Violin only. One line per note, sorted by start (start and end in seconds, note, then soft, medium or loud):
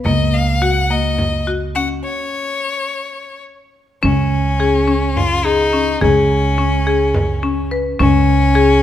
0.05 0.35 D#5 medium
0.34 0.64 F5 medium
0.62 0.92 F#5 medium
0.90 1.47 D#5 medium
1.75 1.88 F#5 medium
2.04 3.42 C#5 medium
4.03 5.18 C#4 medium
5.17 5.47 F4 loud
5.45 6.02 D#4 medium
6.02 7.68 C#4 medium
8.00 8.83 C#4 loud